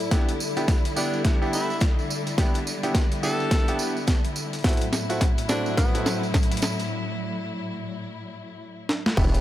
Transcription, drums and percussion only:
0.00 closed hi-hat, tambourine
0.11 kick, snare, closed hi-hat, tambourine
0.29 closed hi-hat, tambourine
0.40 tambourine
0.57 closed hi-hat, tambourine
0.68 kick, snare, closed hi-hat, tambourine
0.85 closed hi-hat, tambourine
0.96 tambourine
1.14 tambourine
1.24 kick, snare, closed hi-hat, tambourine
1.42 tambourine
1.53 tambourine
1.70 tambourine
1.80 kick, snare, closed hi-hat, tambourine
1.99 tambourine
2.10 tambourine
2.27 closed hi-hat, tambourine
2.38 kick, snare, closed hi-hat, tambourine
2.54 closed hi-hat, tambourine
2.67 tambourine
2.83 closed hi-hat, tambourine
2.95 kick, snare, closed hi-hat, tambourine
3.12 closed hi-hat, tambourine
3.23 tambourine
3.40 tambourine
3.51 kick, snare, closed hi-hat, tambourine
3.68 closed hi-hat, tambourine
3.79 tambourine
3.97 tambourine
4.07 kick, snare, closed hi-hat, tambourine
4.24 closed hi-hat, tambourine
4.36 tambourine
4.53 closed hi-hat, tambourine
4.55 closed hi-hat
4.59 closed hi-hat
4.61 closed hi-hat
4.62 kick, snare, closed hi-hat, tambourine
4.64 closed hi-hat
4.69 closed hi-hat
4.73 closed hi-hat
4.77 closed hi-hat, tambourine
4.81 closed hi-hat
4.93 snare, tambourine
5.10 closed hi-hat, tambourine
5.21 kick, snare, closed hi-hat, tambourine
5.38 closed hi-hat, tambourine
5.49 snare, tambourine
5.66 tambourine
5.78 kick, snare, closed hi-hat, tambourine
5.95 closed hi-hat, tambourine
6.06 snare, tambourine
6.23 tambourine
6.34 kick, snare, closed hi-hat, tambourine
6.43 closed hi-hat
6.51 closed hi-hat, tambourine
6.57 closed hi-hat
6.62 snare, tambourine
6.79 closed hi-hat, tambourine
8.89 snare
9.06 snare
9.17 kick, crash, tambourine
9.34 closed hi-hat, tambourine

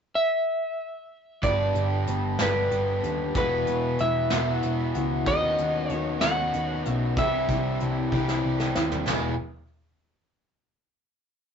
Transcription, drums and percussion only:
1.43 kick, closed hi-hat
1.75 closed hi-hat
2.07 closed hi-hat
2.39 snare, closed hi-hat
2.71 closed hi-hat
3.03 closed hi-hat
3.35 kick, closed hi-hat
3.67 closed hi-hat
3.99 closed hi-hat
4.30 snare, closed hi-hat
4.62 closed hi-hat
4.94 closed hi-hat
5.26 kick, closed hi-hat
5.58 closed hi-hat
5.89 closed hi-hat
6.21 snare, closed hi-hat
6.53 closed hi-hat
6.85 closed hi-hat
7.17 kick, closed hi-hat
7.49 kick, closed hi-hat
7.80 closed hi-hat
8.12 kick
8.29 snare
8.60 snare
8.75 snare
8.92 floor tom
9.07 snare, floor tom, china

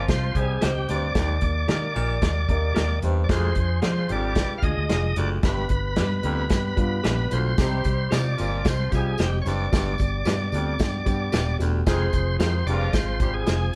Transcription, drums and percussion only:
0.08 kick, snare, closed hi-hat
0.35 kick, closed hi-hat
0.61 snare, closed hi-hat
0.88 snare, closed hi-hat
1.15 kick, snare, closed hi-hat
1.41 kick, closed hi-hat
1.68 snare, closed hi-hat
1.96 closed hi-hat
2.22 kick, snare, closed hi-hat
2.49 kick, closed hi-hat
2.76 snare, closed hi-hat
3.02 closed hi-hat
3.29 kick, snare, closed hi-hat
3.55 kick, closed hi-hat
3.82 snare, closed hi-hat
4.09 closed hi-hat
4.35 kick, snare, closed hi-hat
4.62 kick, closed hi-hat
4.89 snare, closed hi-hat
5.16 snare, closed hi-hat
5.43 kick, snare, closed hi-hat
5.69 kick, closed hi-hat
5.96 snare, closed hi-hat
6.23 closed hi-hat
6.49 kick, snare, closed hi-hat
6.77 kick, closed hi-hat
7.04 snare, closed hi-hat
7.31 closed hi-hat
7.58 kick, snare, closed hi-hat, tambourine
7.84 kick, closed hi-hat, tambourine
8.11 snare, closed hi-hat, tambourine
8.38 closed hi-hat, tambourine
8.65 kick, snare, closed hi-hat, tambourine
8.92 kick, closed hi-hat, tambourine
9.18 snare, closed hi-hat, tambourine
9.46 snare, closed hi-hat, tambourine
9.73 kick, snare, closed hi-hat, tambourine
9.98 kick, closed hi-hat, tambourine
10.25 snare, closed hi-hat, tambourine
10.52 closed hi-hat, tambourine
10.79 kick, snare, closed hi-hat, tambourine
11.06 kick, closed hi-hat, tambourine
11.32 snare, closed hi-hat, tambourine
11.60 snare, closed hi-hat, tambourine
11.86 kick, snare, closed hi-hat, tambourine
12.13 kick, closed hi-hat, tambourine
12.40 snare, closed hi-hat, tambourine
12.67 closed hi-hat, tambourine
12.93 kick, snare, closed hi-hat, tambourine
13.20 kick, closed hi-hat, tambourine
13.46 snare, closed hi-hat, tambourine

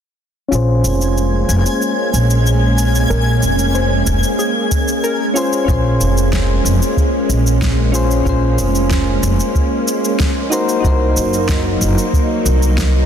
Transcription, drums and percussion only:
0.53 shaker
0.85 shaker
1.01 shaker
1.17 shaker
1.50 shaker
1.66 shaker
1.82 shaker
2.14 shaker
2.30 shaker
2.46 shaker
2.79 shaker
2.95 shaker
3.11 shaker
3.43 shaker
3.59 shaker
3.75 shaker
4.07 kick, shaker
4.23 shaker
4.39 shaker
4.71 kick, shaker
4.88 shaker
5.04 shaker
5.36 shaker
5.53 shaker
5.68 kick, shaker
6.01 shaker
6.18 shaker
6.32 kick, snare, shaker
6.66 shaker
6.82 shaker
6.97 kick, shaker
7.30 shaker
7.47 shaker
7.61 kick, snare, shaker
7.95 shaker
8.11 shaker
8.26 kick, shaker
8.59 shaker
8.75 shaker
8.90 kick, snare, shaker
9.23 shaker
9.40 shaker
9.55 kick, shaker
9.88 shaker
10.05 shaker
10.20 kick, snare, shaker
10.52 shaker
10.69 shaker
10.84 kick, shaker
11.17 shaker
11.33 shaker
11.49 kick, snare, shaker
11.82 shaker
11.98 shaker
12.13 kick, shaker
12.46 shaker
12.63 shaker
12.78 kick, snare, shaker

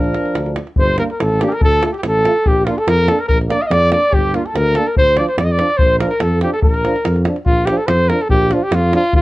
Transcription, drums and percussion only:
0.04 davul high
0.14 davul high
0.26 davul high
0.35 davul high
0.46 davul high
0.56 davul high
0.67 davul high
0.76 davul low
0.98 davul high
1.10 davul high
1.20 davul high
1.41 davul high
1.52 davul high
1.61 davul low
1.83 davul high
1.94 davul high
2.03 davul high
2.25 davul high
2.36 davul high
2.46 davul low
2.67 davul high
2.78 davul high
2.88 davul high
3.08 davul high
3.19 davul high
3.29 davul low
3.41 davul high
3.50 davul high
3.62 davul high
3.71 davul high
3.82 davul high
3.92 davul high
4.12 davul low
4.34 davul high
4.46 davul high
4.56 davul high
4.75 davul high
4.87 davul high
4.97 davul low
5.17 davul high
5.29 davul high
5.38 davul high
5.59 davul high
5.70 davul high
5.79 davul low
6.01 davul high
6.11 davul high
6.20 davul high
6.41 davul high
6.54 davul high
6.62 davul low
6.74 davul high
6.85 davul high
6.96 davul high
7.05 davul high
7.16 davul high
7.25 davul high
7.36 davul high
7.46 davul low
7.67 davul high
7.88 davul high
8.10 davul high
8.21 davul high
8.30 davul low
8.51 davul high
8.72 davul high
8.93 davul high
9.04 davul high
9.13 davul low

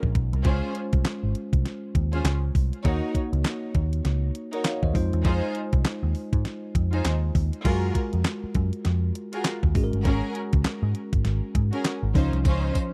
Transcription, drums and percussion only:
0.03 kick
0.15 kick, closed hi-hat
0.33 closed hi-hat
0.45 kick, closed hi-hat
0.75 closed hi-hat
0.93 kick, closed hi-hat
1.05 snare, clap, closed hi-hat
1.35 closed hi-hat
1.53 kick, closed hi-hat
1.65 snare, closed hi-hat
1.95 kick, closed hi-hat
2.13 closed hi-hat
2.25 snare, clap, closed hi-hat
2.55 kick, open hi-hat
2.73 closed hi-hat
2.85 kick, closed hi-hat
3.15 kick, closed hi-hat
3.33 closed hi-hat
3.45 snare, clap, closed hi-hat
3.75 kick, closed hi-hat
3.93 closed hi-hat
4.05 snare, closed hi-hat
4.35 closed hi-hat
4.53 closed hi-hat
4.65 snare, clap, closed hi-hat
4.83 kick
4.95 kick, open hi-hat
5.13 closed hi-hat
5.25 kick, closed hi-hat
5.55 closed hi-hat
5.73 kick, closed hi-hat
5.85 snare, clap, closed hi-hat
6.15 open hi-hat
6.33 kick, closed hi-hat
6.45 snare, closed hi-hat
6.75 kick, closed hi-hat
6.93 closed hi-hat
7.05 snare, clap, closed hi-hat
7.35 kick, open hi-hat
7.53 closed hi-hat
7.65 kick, closed hi-hat, crash
7.95 kick, closed hi-hat
8.13 closed hi-hat
8.25 snare, clap, closed hi-hat
8.55 kick, closed hi-hat
8.73 closed hi-hat
8.85 snare, closed hi-hat
9.15 closed hi-hat
9.33 closed hi-hat
9.45 snare, clap, closed hi-hat
9.63 kick
9.75 kick, open hi-hat
9.93 closed hi-hat
10.05 kick, closed hi-hat
10.35 closed hi-hat
10.53 kick, closed hi-hat
10.65 snare, clap, closed hi-hat
10.95 closed hi-hat
11.13 kick, closed hi-hat
11.25 snare, closed hi-hat
11.55 kick, closed hi-hat
11.73 closed hi-hat
11.85 snare, clap, closed hi-hat
12.15 kick, open hi-hat
12.33 closed hi-hat
12.45 kick, closed hi-hat, tambourine
12.75 kick, closed hi-hat, tambourine

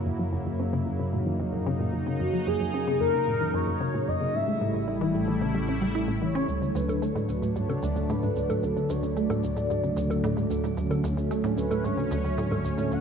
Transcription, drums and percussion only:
6.49 shaker
6.62 shaker
6.76 shaker
6.89 low bongo, shaker
7.03 shaker
7.16 shaker
7.29 shaker
7.43 shaker
7.56 shaker
7.70 low bongo, shaker
7.83 shaker
7.96 shaker
8.09 shaker
8.23 shaker
8.36 shaker
8.50 low bongo, shaker
8.63 shaker
8.76 shaker
8.90 shaker
9.03 shaker
9.17 shaker
9.30 low bongo, shaker
9.43 shaker
9.57 shaker
9.70 shaker
9.83 shaker
9.97 shaker
10.11 low bongo, shaker
10.24 shaker
10.37 shaker
10.51 shaker
10.64 shaker
10.77 shaker
10.91 low bongo, shaker
11.04 shaker
11.18 shaker
11.31 shaker
11.45 shaker
11.58 shaker
11.71 low bongo, shaker
11.85 shaker
11.98 shaker
12.11 shaker
12.25 shaker
12.38 shaker
12.52 low bongo, shaker
12.65 shaker
12.78 shaker
12.92 shaker

